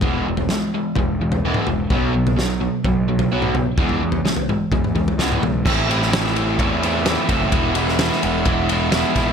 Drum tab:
CC |----------------|----------------|----------------|x---------------|
RD |----------------|----------------|----------------|--x-x-x-x-x-x-x-|
SD |----o-----------|----o-----------|----o-------o---|---ooo------o---|
T2 |-------------o--|-------------o--|------o--o---o--|----------------|
FT |o--o----o--o--o-|o--o----o--o--o-|oo-o-o--o-oo--o-|----------------|
BD |o-------o-------|o-------o-------|o-------o-------|o-------o-----o-|

CC |----------------|
RD |x-x-x-x-x-x-x-x-|
SD |---ooo------o-o-|
T2 |----------------|
FT |----------------|
BD |o-------o-----o-|